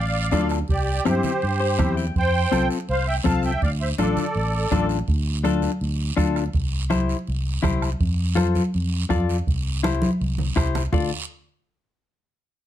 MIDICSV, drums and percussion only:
0, 0, Header, 1, 3, 480
1, 0, Start_track
1, 0, Key_signature, -1, "minor"
1, 0, Tempo, 365631
1, 908, Time_signature, 4, 2, 24, 8
1, 16631, End_track
2, 0, Start_track
2, 0, Title_t, "Two-headed folk drums"
2, 426, Note_on_c, 9, 36, 76
2, 431, Note_on_c, 9, 37, 71
2, 557, Note_off_c, 9, 36, 0
2, 562, Note_off_c, 9, 37, 0
2, 676, Note_on_c, 9, 37, 67
2, 807, Note_off_c, 9, 37, 0
2, 910, Note_on_c, 9, 36, 79
2, 1041, Note_off_c, 9, 36, 0
2, 1395, Note_on_c, 9, 37, 81
2, 1526, Note_off_c, 9, 37, 0
2, 2352, Note_on_c, 9, 37, 74
2, 2353, Note_on_c, 9, 36, 75
2, 2483, Note_off_c, 9, 37, 0
2, 2485, Note_off_c, 9, 36, 0
2, 2834, Note_on_c, 9, 36, 78
2, 2965, Note_off_c, 9, 36, 0
2, 3318, Note_on_c, 9, 37, 79
2, 3450, Note_off_c, 9, 37, 0
2, 4277, Note_on_c, 9, 36, 76
2, 4279, Note_on_c, 9, 37, 82
2, 4408, Note_off_c, 9, 36, 0
2, 4411, Note_off_c, 9, 37, 0
2, 4755, Note_on_c, 9, 36, 82
2, 4886, Note_off_c, 9, 36, 0
2, 5239, Note_on_c, 9, 37, 78
2, 5370, Note_off_c, 9, 37, 0
2, 6193, Note_on_c, 9, 36, 72
2, 6194, Note_on_c, 9, 37, 72
2, 6325, Note_off_c, 9, 36, 0
2, 6325, Note_off_c, 9, 37, 0
2, 6672, Note_on_c, 9, 36, 84
2, 6803, Note_off_c, 9, 36, 0
2, 7148, Note_on_c, 9, 37, 79
2, 7279, Note_off_c, 9, 37, 0
2, 8102, Note_on_c, 9, 37, 78
2, 8108, Note_on_c, 9, 36, 74
2, 8233, Note_off_c, 9, 37, 0
2, 8239, Note_off_c, 9, 36, 0
2, 8352, Note_on_c, 9, 37, 70
2, 8483, Note_off_c, 9, 37, 0
2, 8590, Note_on_c, 9, 36, 80
2, 8722, Note_off_c, 9, 36, 0
2, 9065, Note_on_c, 9, 37, 74
2, 9196, Note_off_c, 9, 37, 0
2, 10027, Note_on_c, 9, 36, 78
2, 10030, Note_on_c, 9, 37, 73
2, 10159, Note_off_c, 9, 36, 0
2, 10161, Note_off_c, 9, 37, 0
2, 10270, Note_on_c, 9, 37, 72
2, 10402, Note_off_c, 9, 37, 0
2, 10508, Note_on_c, 9, 36, 81
2, 10639, Note_off_c, 9, 36, 0
2, 10991, Note_on_c, 9, 37, 81
2, 11122, Note_off_c, 9, 37, 0
2, 11947, Note_on_c, 9, 37, 79
2, 11953, Note_on_c, 9, 36, 75
2, 12078, Note_off_c, 9, 37, 0
2, 12084, Note_off_c, 9, 36, 0
2, 12436, Note_on_c, 9, 36, 78
2, 12567, Note_off_c, 9, 36, 0
2, 12919, Note_on_c, 9, 37, 83
2, 13050, Note_off_c, 9, 37, 0
2, 13874, Note_on_c, 9, 36, 79
2, 13877, Note_on_c, 9, 37, 79
2, 14005, Note_off_c, 9, 36, 0
2, 14009, Note_off_c, 9, 37, 0
2, 14117, Note_on_c, 9, 37, 66
2, 14248, Note_off_c, 9, 37, 0
2, 14355, Note_on_c, 9, 36, 100
2, 14486, Note_off_c, 9, 36, 0
2, 16631, End_track
3, 0, Start_track
3, 0, Title_t, "Drums"
3, 413, Note_on_c, 9, 73, 71
3, 424, Note_on_c, 9, 63, 70
3, 544, Note_off_c, 9, 73, 0
3, 555, Note_off_c, 9, 63, 0
3, 649, Note_on_c, 9, 73, 65
3, 780, Note_off_c, 9, 73, 0
3, 890, Note_on_c, 9, 74, 67
3, 1021, Note_off_c, 9, 74, 0
3, 1385, Note_on_c, 9, 73, 73
3, 1399, Note_on_c, 9, 63, 89
3, 1516, Note_off_c, 9, 73, 0
3, 1530, Note_off_c, 9, 63, 0
3, 1620, Note_on_c, 9, 73, 71
3, 1630, Note_on_c, 9, 64, 75
3, 1751, Note_off_c, 9, 73, 0
3, 1761, Note_off_c, 9, 64, 0
3, 1867, Note_on_c, 9, 74, 71
3, 1999, Note_off_c, 9, 74, 0
3, 2352, Note_on_c, 9, 73, 67
3, 2356, Note_on_c, 9, 63, 72
3, 2356, Note_on_c, 9, 64, 72
3, 2483, Note_off_c, 9, 73, 0
3, 2487, Note_off_c, 9, 63, 0
3, 2487, Note_off_c, 9, 64, 0
3, 2592, Note_on_c, 9, 73, 66
3, 2723, Note_off_c, 9, 73, 0
3, 2838, Note_on_c, 9, 74, 71
3, 2969, Note_off_c, 9, 74, 0
3, 3314, Note_on_c, 9, 73, 70
3, 3316, Note_on_c, 9, 63, 85
3, 3445, Note_off_c, 9, 73, 0
3, 3447, Note_off_c, 9, 63, 0
3, 3552, Note_on_c, 9, 73, 73
3, 3683, Note_off_c, 9, 73, 0
3, 3790, Note_on_c, 9, 74, 68
3, 3921, Note_off_c, 9, 74, 0
3, 4265, Note_on_c, 9, 63, 80
3, 4277, Note_on_c, 9, 73, 70
3, 4396, Note_off_c, 9, 63, 0
3, 4409, Note_off_c, 9, 73, 0
3, 4502, Note_on_c, 9, 73, 67
3, 4633, Note_off_c, 9, 73, 0
3, 4753, Note_on_c, 9, 74, 71
3, 4884, Note_off_c, 9, 74, 0
3, 5229, Note_on_c, 9, 73, 68
3, 5231, Note_on_c, 9, 63, 89
3, 5361, Note_off_c, 9, 73, 0
3, 5363, Note_off_c, 9, 63, 0
3, 5473, Note_on_c, 9, 64, 74
3, 5473, Note_on_c, 9, 73, 72
3, 5604, Note_off_c, 9, 73, 0
3, 5605, Note_off_c, 9, 64, 0
3, 5706, Note_on_c, 9, 74, 65
3, 5837, Note_off_c, 9, 74, 0
3, 6185, Note_on_c, 9, 73, 63
3, 6196, Note_on_c, 9, 63, 78
3, 6196, Note_on_c, 9, 64, 70
3, 6317, Note_off_c, 9, 73, 0
3, 6328, Note_off_c, 9, 63, 0
3, 6328, Note_off_c, 9, 64, 0
3, 6424, Note_on_c, 9, 73, 66
3, 6555, Note_off_c, 9, 73, 0
3, 6665, Note_on_c, 9, 74, 69
3, 6796, Note_off_c, 9, 74, 0
3, 7150, Note_on_c, 9, 73, 67
3, 7153, Note_on_c, 9, 63, 83
3, 7281, Note_off_c, 9, 73, 0
3, 7285, Note_off_c, 9, 63, 0
3, 7382, Note_on_c, 9, 73, 67
3, 7390, Note_on_c, 9, 63, 70
3, 7513, Note_off_c, 9, 73, 0
3, 7521, Note_off_c, 9, 63, 0
3, 7629, Note_on_c, 9, 74, 70
3, 7760, Note_off_c, 9, 74, 0
3, 8103, Note_on_c, 9, 63, 72
3, 8112, Note_on_c, 9, 73, 71
3, 8235, Note_off_c, 9, 63, 0
3, 8243, Note_off_c, 9, 73, 0
3, 8352, Note_on_c, 9, 73, 70
3, 8484, Note_off_c, 9, 73, 0
3, 8579, Note_on_c, 9, 74, 72
3, 8710, Note_off_c, 9, 74, 0
3, 9062, Note_on_c, 9, 63, 87
3, 9069, Note_on_c, 9, 73, 67
3, 9194, Note_off_c, 9, 63, 0
3, 9200, Note_off_c, 9, 73, 0
3, 9312, Note_on_c, 9, 73, 71
3, 9443, Note_off_c, 9, 73, 0
3, 9550, Note_on_c, 9, 74, 70
3, 9681, Note_off_c, 9, 74, 0
3, 10021, Note_on_c, 9, 63, 71
3, 10021, Note_on_c, 9, 64, 74
3, 10029, Note_on_c, 9, 73, 66
3, 10153, Note_off_c, 9, 63, 0
3, 10153, Note_off_c, 9, 64, 0
3, 10160, Note_off_c, 9, 73, 0
3, 10274, Note_on_c, 9, 73, 67
3, 10405, Note_off_c, 9, 73, 0
3, 10511, Note_on_c, 9, 74, 74
3, 10642, Note_off_c, 9, 74, 0
3, 10986, Note_on_c, 9, 63, 94
3, 10993, Note_on_c, 9, 73, 66
3, 11117, Note_off_c, 9, 63, 0
3, 11125, Note_off_c, 9, 73, 0
3, 11227, Note_on_c, 9, 63, 77
3, 11232, Note_on_c, 9, 73, 64
3, 11358, Note_off_c, 9, 63, 0
3, 11364, Note_off_c, 9, 73, 0
3, 11476, Note_on_c, 9, 74, 75
3, 11607, Note_off_c, 9, 74, 0
3, 11953, Note_on_c, 9, 63, 74
3, 11954, Note_on_c, 9, 73, 69
3, 12084, Note_off_c, 9, 63, 0
3, 12086, Note_off_c, 9, 73, 0
3, 12202, Note_on_c, 9, 73, 73
3, 12333, Note_off_c, 9, 73, 0
3, 12446, Note_on_c, 9, 74, 78
3, 12578, Note_off_c, 9, 74, 0
3, 12921, Note_on_c, 9, 63, 95
3, 12933, Note_on_c, 9, 73, 66
3, 13053, Note_off_c, 9, 63, 0
3, 13065, Note_off_c, 9, 73, 0
3, 13150, Note_on_c, 9, 63, 107
3, 13171, Note_on_c, 9, 73, 74
3, 13281, Note_off_c, 9, 63, 0
3, 13302, Note_off_c, 9, 73, 0
3, 13410, Note_on_c, 9, 74, 68
3, 13542, Note_off_c, 9, 74, 0
3, 13632, Note_on_c, 9, 64, 82
3, 13763, Note_off_c, 9, 64, 0
3, 13886, Note_on_c, 9, 73, 70
3, 14017, Note_off_c, 9, 73, 0
3, 14114, Note_on_c, 9, 64, 77
3, 14130, Note_on_c, 9, 73, 70
3, 14246, Note_off_c, 9, 64, 0
3, 14261, Note_off_c, 9, 73, 0
3, 14345, Note_on_c, 9, 64, 103
3, 14365, Note_on_c, 9, 74, 103
3, 14476, Note_off_c, 9, 64, 0
3, 14496, Note_off_c, 9, 74, 0
3, 16631, End_track
0, 0, End_of_file